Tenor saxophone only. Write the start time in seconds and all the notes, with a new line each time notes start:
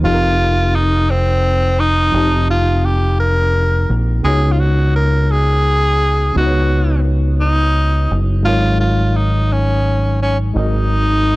0.05 F4
0.75 D#4
1.10 C4
1.79 D#4
2.50 F4
2.85 G4
3.20 A#4
4.24 G#4
4.52 F4
4.60 F#4
4.96 A#4
5.31 G#4
6.37 F#4
7.40 D#4
8.45 F4
8.80 F4
9.17 D#4
9.52 C#4
10.22 C#4
10.57 D#4